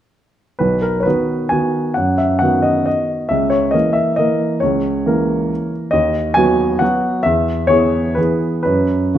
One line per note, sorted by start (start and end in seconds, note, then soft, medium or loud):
0.59 1.04 B1 soft
0.59 0.82 B4 soft
0.82 0.98 A#4 soft
1.00 1.50 B4 soft
1.00 1.06 C#5 soft
1.06 1.48 D#3 soft
1.06 1.48 B3 soft
1.06 1.48 F#4 soft
1.49 1.93 D#3 soft
1.49 1.93 B3 soft
1.49 1.94 F#4 soft
1.49 1.96 G#5 soft
1.94 2.40 F#2 soft
1.94 2.17 F#5 soft
2.18 2.41 E5 soft
2.39 3.27 D#3 soft
2.39 3.28 B3 soft
2.39 3.28 F#4 soft
2.39 2.63 F#5 medium
2.62 2.84 D#5 soft
2.86 3.30 D#5 soft
3.29 3.73 C#2 soft
3.29 3.51 E5 soft
3.50 3.73 C#5 soft
3.71 4.15 E3 soft
3.71 4.15 A#3 soft
3.71 4.15 A#4 soft
3.71 3.95 D#5 soft
3.93 4.17 E5 soft
4.16 4.58 E3 soft
4.16 4.59 A#3 soft
4.16 4.59 A#4 soft
4.16 4.61 D#5 soft
4.60 5.05 C#2 soft
4.60 5.71 C#5 soft
5.06 5.90 E3 soft
5.06 5.90 A#3 soft
5.06 5.91 A#4 soft
5.91 6.35 D#2 soft
5.91 6.35 D#5 medium
6.34 6.77 F#3 soft
6.34 6.78 B3 soft
6.34 6.78 F#4 soft
6.34 6.80 G#5 medium
6.79 7.22 F#3 soft
6.79 7.22 B3 soft
6.79 7.22 F#4 soft
6.79 7.25 F#5 soft
7.23 7.68 E2 soft
7.23 7.69 E5 medium
7.67 8.13 E3 soft
7.67 8.13 B3 soft
7.67 8.13 G#4 soft
7.67 8.16 C#5 medium
8.15 8.62 E3 soft
8.15 8.62 B3 soft
8.15 8.62 G#4 soft
8.15 8.61 B4 soft
8.63 9.12 F#2 soft
8.63 9.18 B4 medium
9.14 9.18 C#3 soft
9.14 9.18 F#4 soft